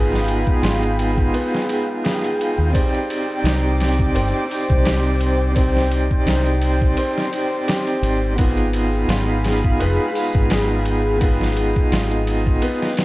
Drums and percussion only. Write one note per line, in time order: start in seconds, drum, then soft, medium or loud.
0.13 snare soft
0.28 ride medium
0.47 kick medium
0.63 snare loud
0.63 ride medium
0.83 ride soft
0.99 ride medium
1.17 kick medium
1.34 ride medium
1.55 snare soft
1.70 ride medium
2.05 snare loud
2.05 ride medium
2.24 ride soft
2.41 ride medium
2.75 kick loud
2.75 ride medium
2.95 ride soft
3.10 ride medium
3.46 snare loud
3.46 ride medium
3.80 snare medium
3.80 ride medium
3.99 kick medium
4.16 ride medium
4.51 open hi-hat medium
4.70 kick loud
4.85 snare loud
4.85 ride medium
5.21 ride medium
5.56 kick loud
5.56 ride medium
5.76 snare soft
5.91 ride medium
6.11 kick loud
6.27 snare loud
6.27 ride medium
6.46 ride soft
6.61 ride medium
6.81 kick loud
6.97 ride medium
7.18 snare soft
7.33 ride medium
7.68 snare loud
7.68 ride medium
7.87 ride soft
8.03 ride medium
8.38 kick loud
8.38 ride medium
8.57 ride soft
8.73 ride medium
9.09 snare loud
9.09 ride medium
9.45 snare medium
9.45 ride medium
9.64 kick medium
9.80 ride medium
10.15 open hi-hat medium
10.35 kick loud
10.50 snare loud
10.50 ride medium
10.86 ride medium
11.21 kick loud
11.21 ride medium
11.41 snare soft
11.57 ride medium
11.76 kick medium
11.92 snare loud
11.92 ride medium
12.11 ride soft
12.27 ride medium
12.47 kick loud
12.62 ride medium
12.83 snare soft
12.98 snare loud
12.98 ride medium